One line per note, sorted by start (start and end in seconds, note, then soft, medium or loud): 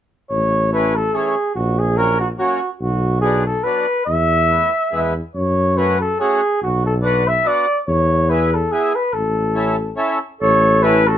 0.30 1.13 A1 medium
0.30 0.69 C#5 medium
0.72 0.93 E3 soft
0.72 0.93 A3 soft
0.72 0.94 C#4 medium
0.72 0.97 B4 medium
0.95 1.16 A4 medium
1.13 1.35 E3 soft
1.13 1.35 A3 soft
1.13 1.35 C#4 medium
1.13 1.54 G#4 medium
1.55 2.37 A#1 medium
1.55 1.80 F#4 medium
1.79 1.98 G#4 medium
1.97 2.18 F#3 soft
1.97 2.18 A#3 soft
1.97 2.19 C#4 medium
1.97 2.19 A#4 medium
2.20 2.29 F#4 medium
2.38 2.59 F#3 soft
2.38 2.60 A#3 soft
2.38 2.60 C#4 medium
2.38 2.69 F#4 medium
2.79 3.63 B1 medium
2.79 3.19 F#4 medium
3.21 3.44 F#3 medium
3.21 3.44 B3 medium
3.21 3.44 D4 medium
3.21 3.43 G#4 medium
3.45 3.65 A4 medium
3.63 3.85 F#3 medium
3.63 3.86 B3 soft
3.63 3.86 D4 medium
3.63 4.05 B4 medium
4.06 4.63 E2 medium
4.06 5.11 E5 medium
4.49 4.70 A3 soft
4.49 4.71 B3 soft
4.49 4.71 E4 soft
4.91 5.20 E2 medium
4.91 5.13 G#3 medium
4.91 5.13 B3 soft
4.91 5.14 E4 medium
5.35 6.18 F#2 medium
5.35 5.79 C#5 medium
5.77 5.98 A3 soft
5.77 5.98 C#4 soft
5.77 5.99 F#4 soft
5.77 6.00 B4 medium
6.01 6.18 A4 medium
6.20 6.41 A3 soft
6.20 6.40 C#4 soft
6.20 6.41 F#4 medium
6.20 6.59 G#4 medium
6.63 7.44 B1 medium
6.63 6.84 F#4 medium
6.86 6.94 A4 medium
7.02 7.23 B3 medium
7.02 7.24 D4 medium
7.02 7.24 F#4 medium
7.02 7.29 B4 medium
7.28 7.49 E5 medium
7.44 7.65 B3 medium
7.44 7.66 D4 soft
7.44 7.66 F#4 medium
7.44 7.79 D5 medium
7.87 8.70 E2 loud
7.87 8.31 C#5 medium
8.28 8.50 B3 medium
8.28 8.50 E4 soft
8.28 8.50 G#4 soft
8.28 8.56 B4 medium
8.54 8.73 A4 medium
8.71 8.92 B3 soft
8.71 8.93 E4 soft
8.71 8.97 G#4 medium
8.71 8.93 G#4 medium
8.95 9.15 B4 medium
9.13 9.96 A1 medium
9.13 9.98 A4 medium
9.55 9.76 C#4 soft
9.55 9.76 E4 soft
9.55 9.77 A4 medium
9.96 10.18 C#4 medium
9.96 10.19 E4 medium
9.96 10.19 A4 medium
10.41 11.18 A1 medium
10.41 10.86 A4 medium
10.41 10.84 C#5 medium
10.82 11.03 C#4 soft
10.82 11.04 E4 medium
10.82 11.09 E4 medium
10.82 11.04 A4 medium
10.82 11.09 B4 medium
11.07 11.18 F#4 medium
11.07 11.18 A4 medium